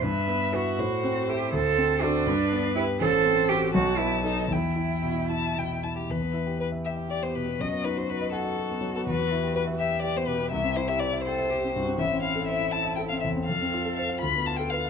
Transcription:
<<
  \new Staff \with { instrumentName = "Violin" } { \time 6/8 \key e \minor \tempo 4. = 81 e''4. c''4. | c''4. b'4. | c''4. a''4. | g''4. a''8 g''8 a''16 g'16 |
b'4 b'8 e''8 d''16 c''16 b'8 | dis''8 b'16 c''16 b'8 a'4~ a'16 a'16 | b'4 b'8 e''8 d''16 c''16 b'8 | e''8 c''16 e''16 d''8 c''4~ c''16 r16 |
\key a \minor e''8 f''8 e''8 a''8 g''16 f''16 e''8 | f''4 f''8 b''8 a''16 g''16 f''8 | }
  \new Staff \with { instrumentName = "Cello" } { \time 6/8 \key e \minor b'4 fis'4. g'8 | a'4 d'4. e'8 | a'4 g'8 fis'8 e'8 dis'8 | e'2~ e'8 r8 |
r4. g'4. | fis'4. fis'4.~ | fis'4. g'4. | e'4. a'8 g'8 fis'8 |
\key a \minor e'2. | a'4. f'4. | }
  \new Staff \with { instrumentName = "Grand piano" } { \time 6/8 \key e \minor g,8 b8 <e' b'>8 a,8 c'8 <e' a'>8 | d,8 c'8 <fis' a'>8 g,8 b8 <g' b'>8 | a,,8 c'8 <fis' a'>8 b,,8 b8 <dis' a'>8 | e,8 e'8 b,8 e'8 b,8 e'8 |
e,16 b16 e'16 g'16 b'16 e''16 g''16 e''16 g'16 b16 b,16 b16 | fis,16 b16 dis'16 fis'16 b'16 dis''16 fis''16 dis''16 fis'16 b16 fis16 b16 | e,16 b16 e'16 g'16 b'16 e''16 g''16 e''16 g'16 b16 b,16 b16 | c,16 c'16 e'16 g'16 c''16 e''16 g''16 e''16 g'16 c'16 g,16 c'16 |
\key a \minor a,,16 c'16 e'16 a'16 c''16 e''16 a''16 e''16 a'16 c'16 e,16 c'16 | f,16 c'16 f'16 a'16 c''16 f''16 d,16 b16 f'16 a'16 b'16 f''16 | }
>>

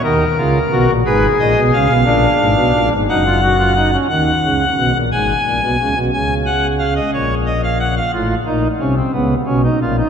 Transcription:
<<
  \new Staff \with { instrumentName = "Pipe organ" } { \time 6/8 \key dis \phrygian \tempo 4. = 59 << { ais'4. b'8 dis''8 eis''8~ | eis''4. fis''4. | fis''4. gis''4. | gis''8 fis''8 eis''16 dis''16 cis''8 dis''16 eis''16 fis''16 eis''16 |
r2. | } \\ { dis'8 eis'8 fis'8 gis'4. | d'4. dis'16 eis'16 fis'16 eis'16 dis'16 cis'16 | r2. | r2. |
f'8 ees'8 cis'16 c'16 b8 cis'16 dis'16 eis'16 dis'16 | } >> }
  \new Staff \with { instrumentName = "Pipe organ" } { \clef bass \time 6/8 \key dis \phrygian <dis, dis>8 <cis, cis>8 <b,, b,>16 <ais,, ais,>16 <gis,, gis,>8 <ais,, ais,>16 <b,, b,>16 <cis, cis>16 <b,, b,>16 | <ais,, ais,>8 <gis,, gis,>16 <b,, b,>16 <ais,, ais,>16 <gis,, gis,>16 <fis,, fis,>4. | <dis, dis>8 <cis, cis>8 <b,, b,>16 <ais,, ais,>16 <gis,, gis,>8 <ais,, ais,>16 <b,, b,>16 <cis, cis>16 <b,, b,>16 | <cis, cis>4. <ais,, ais,>4. |
<a,, a,>8 <ais,, ais,>8 <c, c>8 <cis, cis>8 <b,, b,>8 <ais,, ais,>8 | }
>>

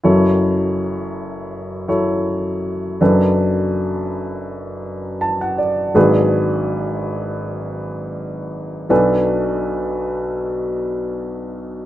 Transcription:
<<
  \new Staff \with { instrumentName = "Upright piano" } { \time 4/4 \key fis \minor \tempo 4 = 81 << { r1 | r2. a''16 fis''16 d''8 | r1 | r1 | } \\ { <fis e' a' cis''>2~ <fis e' a' cis''>8 <fis e' a' cis''>4. | <fis d' a' b'>1 | <fis d' gis' b'>1 | <fis d' a' b'>1 | } >> }
  \new Staff \with { instrumentName = "Upright piano" } { \clef bass \time 4/4 \key fis \minor <fis,, fis,>1 | <fis,, fis,>1 | <gis,, gis,>1 | <b,, b,>1 | }
>>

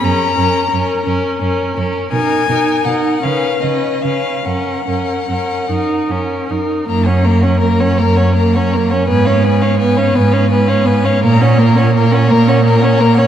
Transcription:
<<
  \new Staff \with { instrumentName = "Violin" } { \time 6/8 \key fis \major \tempo 4. = 56 ais''4. r4. | gis''4 fis''8 eis''8 dis''8 eis''8 | fis''2~ fis''8 r8 | ais''16 fis''16 ais''16 fis''16 ais''16 fis''16 ais''16 fis''16 ais''16 fis''16 ais''16 fis''16 |
gis''16 eis''16 gis''16 eis''16 gis''16 eis''16 gis''16 eis''16 gis''16 eis''16 gis''16 eis''16 | ais''16 fis''16 ais''16 fis''16 ais''16 fis''16 ais''16 fis''16 ais''16 fis''16 ais''16 fis''16 | }
  \new Staff \with { instrumentName = "Violin" } { \time 6/8 \key fis \major ais'8 ais'8 ais'8 ais'8 ais'8 ais'8 | ais'8 ais'8 ais'8 b'8 b'8 b'8 | ais'8 ais'8 ais'8 ais'8 ais'8 ais'8 | ais'16 cis''16 ais'16 cis''16 ais'16 cis''16 ais'16 cis''16 ais'16 cis''16 ais'16 cis''16 |
b'16 cis''16 b'16 cis''16 b'16 cis''16 b'16 cis''16 b'16 cis''16 b'16 cis''16 | ais'16 cis''16 ais'16 cis''16 ais'16 cis''16 ais'16 cis''16 ais'16 cis''16 ais'16 cis''16 | }
  \new Staff \with { instrumentName = "Viola" } { \time 6/8 \key fis \major cis'8 cis'8 cis'8 cis'8 cis'8 cis'8 | dis'8 dis'8 dis'8 cis'8 cis'8 cis'8 | cis'8 cis'8 cis'8 dis'8 cis'8 dis'8 | ais16 cis'16 ais16 cis'16 ais16 cis'16 ais16 cis'16 ais16 cis'16 ais16 cis'16 |
b16 cis'16 b16 cis'16 b16 cis'16 b16 cis'16 b16 cis'16 b16 cis'16 | ais16 cis'16 ais16 cis'16 ais16 cis'16 ais16 cis'16 ais16 cis'16 ais16 cis'16 | }
  \new Staff \with { instrumentName = "Cello" } { \clef bass \time 6/8 \key fis \major fis,8 fis,8 fis,8 fis,8 fis,8 fis,8 | b,8 b,8 b,8 cis8 cis8 cis8 | fis,8 fis,8 fis,8 fis,8 fis,8 fis,8 | fis,4. fis,4. |
gis,4. gis,4. | ais,4. ais,4. | }
>>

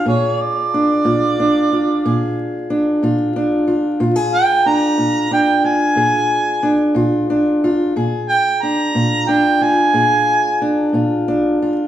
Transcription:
<<
  \new Staff \with { instrumentName = "Harmonica" } { \time 12/8 \key bes \mixolydian \tempo 4. = 61 des''8 d''2. r2 r8 | r8 g''8 bes''4 g''8 aes''2 r4. | r8 g''8 bes''4 g''8 aes''2 r4. | }
  \new Staff \with { instrumentName = "Steel-string acoustic guitar" } { \time 12/8 \key bes \mixolydian << { aes'4 d'8 f'8 d'8 f'8 aes'4 d'8 f'8 d'8 f'8 | f'16 aes'8. d'8 f'8 d'8 f'8 aes'4 d'8 f'8 d'8 f'8 | aes'4 d'8 f'8 d'8 f'8 aes'4 d'8 f'8 d'8 f'8 | } \\ { bes,4 r8 bes,4 r8 bes,4 r8 bes,4 r8 | bes,4 r8 bes,4 r8 bes,4 r8 bes,4 r8 | bes,4 r8 bes,4 r8 bes,4 r8 bes,4 r8 | } >> }
>>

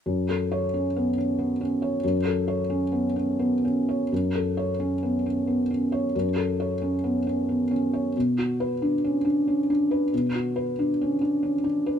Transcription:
\new Staff \with { instrumentName = "Felt piano" } { \time 3/4 \key fis \minor \tempo 4 = 90 << { \tuplet 3/2 { r4 cis''8 } r2 | r2. | \tuplet 3/2 { r4 cis''8 } r2 | r2. |
\tuplet 3/2 { r4 b'8 } r2 | r2. | } \\ { \tuplet 3/2 { fis,8 a'4 cis'8 b8 cis'8 b8 cis'8 cis''8 } | \tuplet 3/2 { fis,8 a'8 cis''8 cis'8 b8 cis'8 b8 cis'8 cis''8 } | \tuplet 3/2 { fis,8 a'4 cis'8 b8 cis'8 b8 cis'8 cis''8 } | \tuplet 3/2 { fis,8 a'8 cis''8 cis'8 b8 cis'8 b8 cis'8 cis''8 } |
\tuplet 3/2 { b,8 fis'4 d'8 cis'8 d'8 cis'8 d'8 b'8 } | \tuplet 3/2 { b,8 fis'8 b'8 d'8 cis'8 d'8 cis'8 d'8 b'8 } | } >> }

